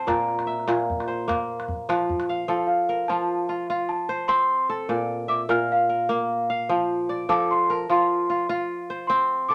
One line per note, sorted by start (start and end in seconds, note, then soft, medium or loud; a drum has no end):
0.00 0.13 F3 medium
0.00 1.27 C4 medium
0.00 0.53 F4 medium
0.00 1.07 C5 medium
0.07 0.66 A#2 medium
0.07 1.18 D5 medium
0.07 2.04 A#5 medium
0.07 calabash thump medium
0.07 calabash click medium
0.28 calabash click soft
0.39 calabash click soft
0.47 1.50 E5 medium
0.47 calabash click soft
0.60 calabash click soft
0.68 2.53 A#2 medium
0.68 calabash click medium
0.80 calabash click soft
0.90 calabash thump medium
1.00 calabash click soft
1.08 2.26 C5 medium
1.08 calabash click soft
1.28 2.55 A#3 medium
1.28 calabash thump medium
1.28 calabash click medium
1.60 calabash click soft
1.68 calabash thump medium
1.89 2.47 F3 medium
1.89 calabash click medium
1.99 calabash click soft
2.10 calabash thump medium
2.20 calabash click medium
2.29 3.29 F5 medium
2.48 3.08 F3 medium
2.48 3.80 A4 medium
2.67 3.09 F5 medium
2.89 4.16 A#4 medium
3.08 4.94 F3 medium
3.08 3.49 F4 medium
3.08 3.46 A5 loud
3.49 3.69 F4 medium
3.70 5.21 F4 medium
3.89 4.26 A5 medium
4.09 5.28 C5 medium
4.28 6.09 C4 medium
4.28 4.66 C6 loud
4.69 5.55 A4 medium
4.89 5.48 A#2 medium
4.89 6.00 D5 medium
5.28 6.32 E5 medium
5.28 5.38 D6 medium
5.49 7.34 A#2 medium
5.49 5.89 A#4 medium
5.49 5.70 F6 medium
5.72 6.66 F5 medium
5.89 7.17 A#4 medium
6.09 7.35 A#3 medium
6.50 7.50 F5 medium
6.69 7.28 F3 medium
7.09 8.20 D5 medium
7.29 7.88 F3 medium
7.29 8.61 A4 medium
7.29 7.50 D6 medium
7.51 7.70 C6 medium
7.70 8.97 A#4 medium
7.70 7.80 A5 medium
7.89 9.55 F3 medium
7.89 8.29 F4 medium
7.89 8.46 C6 medium
8.30 8.49 F4 medium
8.49 9.55 F4 medium
8.90 9.55 C5 medium
9.07 9.55 C4 medium
9.07 9.49 C6 medium
9.49 9.55 A4 medium
9.49 9.55 D6 medium